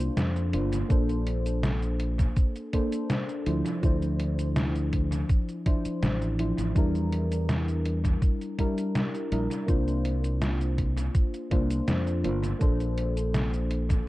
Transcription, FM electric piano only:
Already playing: A#3 D4 F4 C5
0.53 A#3 D4 F4 C5
0.89 A#3 D4 A4 C5
2.73 A#3 D4 A4 C5
3.46 F3 D4 E4 C5
3.82 F3 D4 E4 C5
5.66 F3 D4 E4 C5
6.39 F3 D4 E4 C5
6.75 G3 D4 E4 A#4
8.58 G3 D4 E4 A#4
9.31 G3 D4 E4 A#4
9.66 A#3 D4 F4 C5
11.51 A#3 D4 F4 C5
12.24 A#3 D4 F4 C5
12.59 A#3 D4 A4 C5

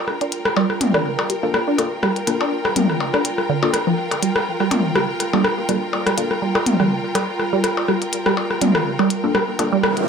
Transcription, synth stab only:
1.43 A#3 D4 F4 A4
1.79 A#3 D4 F4 A4
2.27 A#3 D4 F4 A4
3.63 A#3 D4 F4 A4
5.33 A#3 D4 F4 A4
5.69 A#3 D4 F4 A4
6.18 A#3 D4 F4 A4
9.24 A#3 D4 F4 A4
9.59 A#3 D4 F4 A4

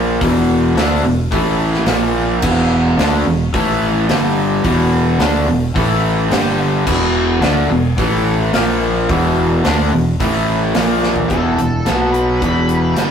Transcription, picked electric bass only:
Already playing: A#1
0.21 E1
0.75 D2
1.03 E1
1.32 A1
1.87 A#1
2.43 E1
2.97 D2
3.25 E1
3.54 A1
4.09 G1
4.64 E1
5.19 D2
5.48 E1
5.76 A1
6.31 G1
6.87 E1
7.41 D2
7.69 E1
7.98 A1
8.54 A#1
9.09 E1
9.65 D2
9.93 E1
10.20 A1
10.75 A#1
11.31 E1
11.59 E1
11.87 B1
12.42 E1
12.97 G1

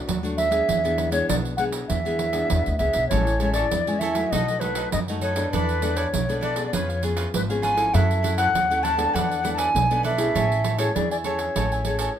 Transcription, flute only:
0.37 E5
1.12 C#5
1.29 D5
1.57 F#5
1.88 E5
2.78 E5
3.08 C#5
3.53 D5
3.99 E5
4.31 D#5
4.60 B4
4.92 D#5
5.22 C#5
5.53 B4
5.97 C#5
6.42 D5
6.67 D5
6.73 C#5
7.35 B4
7.62 G#5
7.94 E5
8.37 F#5
8.83 A5
9.14 F#5
9.53 A5
9.58 G#5
10.05 E5
10.79 C#5
10.95 D5
11.11 D5
11.25 C#5

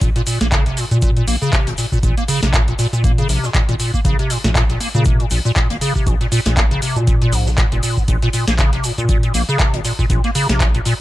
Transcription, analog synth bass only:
0.01 A#1
0.41 A#1
0.91 A#2
1.27 A#1
1.67 G#1
2.03 A#1
2.43 A#1
2.93 A#2
3.29 A#1
3.69 G#1
4.05 A#1
4.44 A#1
4.95 A#2
5.31 A#1
5.70 G#1
6.06 A#1
6.46 A#1
6.96 A#2
7.32 A#1
7.72 F1
8.08 A#1
8.48 A#1
8.98 A#2
9.34 A#1
9.74 G#1
10.10 A#1
10.49 A#1

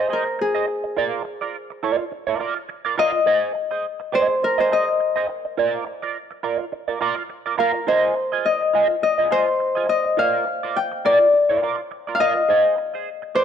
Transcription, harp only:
Already playing: C5 D#5
0.13 A#4
0.41 G#4
2.99 D#5
4.15 C5
4.44 A#4
4.60 C5
4.73 D#5
7.60 A#4
7.88 C5
8.46 D#5
9.03 D#5
9.32 C5
9.89 D#5
10.19 F5
10.76 G5
11.06 D5
12.15 F5
12.20 D#5
13.35 C5

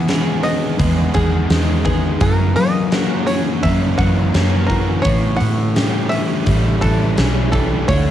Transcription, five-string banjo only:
Already playing: E5
0.43 D#5
1.14 G#4
1.85 G#4
2.21 A#4
2.56 D#5
3.27 C#5
3.63 E5
3.98 F#5
4.67 A#4
5.02 C#5
5.36 F#5
6.09 E5
6.81 A4
7.52 A4
7.88 C#5

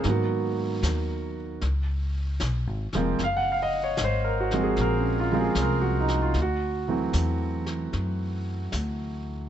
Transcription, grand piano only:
0.05 D#3 F#3 A#3 B3
0.10 F#4
2.95 F3 G#3 A#3 C4
3.24 F5
3.37 F#5
3.52 F5
3.63 D#5
3.84 C#5
4.04 C5
4.24 A#4
4.40 F#4
4.53 F3 G#3 A#3 C4
4.64 G#4
4.81 A#4
5.00 C#4
5.20 F4
5.32 F3 G#3 A#3 C4
5.41 G#4
5.62 A#4
5.81 F#4
6.01 D#4
6.22 F4
6.42 F#4
6.88 E3 F#3 A3 C4

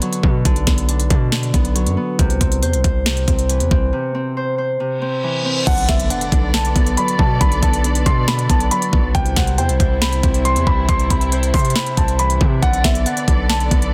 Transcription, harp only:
Already playing: D3 B3 D4
0.02 F#3
0.24 B3
0.45 D3
0.67 B3
0.89 D4
1.10 D4
1.32 D3
1.54 B3
1.75 F#3
1.97 B3
2.19 C3
2.41 C4
2.63 C5
2.84 C5
3.06 C3
3.28 C4
3.50 E3
3.72 C4
3.93 C3
4.15 C4
4.37 C5
4.58 C5
4.80 C3
5.02 C4
5.23 E3
5.45 C4
5.67 D3
5.89 B3
6.10 D4
6.32 D4
6.54 D3
6.75 B3
6.97 F#3
7.19 B3
7.41 D3
7.63 B3
7.85 D4
8.06 D4
8.28 D3
8.50 B3
8.71 F#3
8.93 B3
9.15 C3
9.37 C4
9.58 C5
9.80 C5
10.02 C3
10.23 C4
10.45 E3
10.67 C4
10.88 C3
11.10 C4
11.32 C5
11.54 C5
11.76 C3
11.97 C4
12.19 E3
12.41 C4
12.62 D3
12.85 B3
13.06 D4
13.28 D4
13.50 D3
13.71 B3

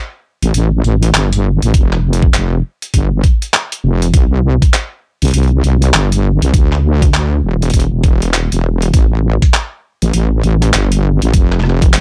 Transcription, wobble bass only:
0.42 A1
0.54 A1
0.84 A1
1.14 G1
1.63 A1
1.74 F1
2.94 G1
3.84 F1
4.14 C2
5.22 C2
5.34 C2
5.64 C2
5.94 G1
6.42 C2
6.54 D2
7.44 E1
7.74 E1
7.92 E1
8.52 E1
8.94 A1
10.02 A1
10.14 A1
10.44 A1
10.74 G1
11.22 A1
11.34 F1

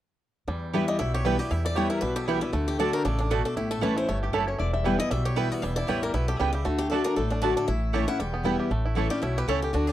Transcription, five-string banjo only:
0.48 G3
0.74 G4
0.88 G3
1.00 E4
1.14 G4
1.25 G3
1.40 G4
1.51 E4
1.65 G3
1.75 G4
1.90 E4
2.02 G3
2.16 G4
2.28 E4
2.42 G3
2.53 A3
2.80 D4
2.94 A3
3.05 D4
3.20 D4
3.31 A3
3.46 D4
3.57 E4
3.71 A3
3.83 E3
3.97 E4
4.09 A3
4.23 G4
4.34 E4
4.47 C#4
4.59 E4
4.73 G3
4.84 E3
4.99 E4
5.11 G3
5.25 G4
5.37 E4
5.52 B3
5.63 G3
5.77 E4
5.89 G4
6.03 G3
6.14 E4
6.28 G4
6.39 G3
6.55 G4
6.65 A3
6.91 D4
7.06 D4
7.17 A3
7.32 D4
7.42 D4
7.57 D4
7.68 E4
7.94 G4
8.08 E4
8.20 G3
8.34 B3
8.45 E4
8.60 G4
8.71 A3
8.85 E4
8.97 A3
9.11 G4
9.23 E4
9.38 G4
9.49 C#4
9.64 G4
9.75 D4
9.89 D4

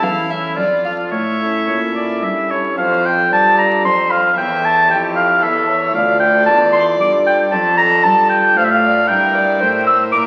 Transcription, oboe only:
Already playing: E4
0.57 F4
1.11 C#5
1.66 C#5
1.95 D5
2.23 E5
2.51 C#5
2.78 F5
3.06 G5
3.33 A5
3.58 A#5
3.85 C6
4.11 F5
4.38 G5
4.65 A5
4.91 G5
5.16 F5
5.43 E5
5.95 F5
6.20 G5
6.46 A5
6.73 C6
7.01 D6
7.26 G5
7.52 A5
7.77 A#5
8.03 A5
8.29 G5
8.57 F5
8.64 E5
8.71 F5
9.08 G5
9.87 E6
10.12 D6

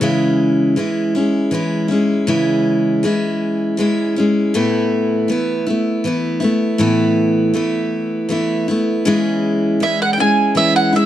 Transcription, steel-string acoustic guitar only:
0.01 C#3 E3 G#3 C#4 E4
0.76 E3 G#3 C#4 E4
1.15 G#3 C#4 E4
1.51 E3 G#3 C#4 E4
1.88 G#3 C#4 E4
2.27 C#3 E3 G#3 C#4 E4
3.03 E3 G#3 C#4 E4
3.77 E3 G#3 C#4 E4
4.16 G#3 C#4 E4
4.54 A2 E3 A3 B3 E4
5.28 E3 A3 B3 E4
5.67 A3 B3 E4
6.04 E3 A3 B3 E4
6.40 B3 E4
6.44 A3
6.78 A2 E3 A3 B3 E4
7.54 E3 A3 B3 E4
8.29 E3 A3 B3 E4
8.68 A3 B3 E4
9.05 C#3 E3 G#3 C#4 E4
9.80 E3 G#3 C#4 E4
10.18 G#3 C#4 E4
10.55 E3 G#3 C#4 E4
10.92 G#3 C#4 E4

